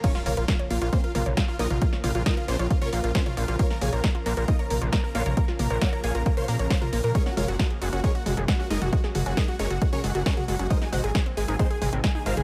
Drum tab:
CC |x---------------|----------------|----------------|----------------|
HH |x-oxxxoxxxoxx-ox|x-oxxxoxxxoxxxox|x-oxxxoxxxoxx-ox|x-oxxxoxxxoxxxox|
SD |-o--o-------o---|-o--o-------o---|-o--o-------o---|-o--o-------o---|
T2 |--o-------oo---o|--o------o---o--|--o-------oo---o|--o------o---o--|
BD |o---o---o---o---|o---o---o---o---|o---o---o---o---|o---o---o---o---|

CC |----------------|----------------|----------------|
HH |x-oxxxoxxxoxx-ox|x-oxxxoxxxoxxxox|x-oxxxoxxxoxx-ox|
SD |-o--o-------o---|-o--o-------o---|-o--o-------o---|
T2 |--o-------oo---o|--o------o---o--|--o-------oo---o|
BD |o---o---o---o---|o---o---o---o---|o---o---o---o---|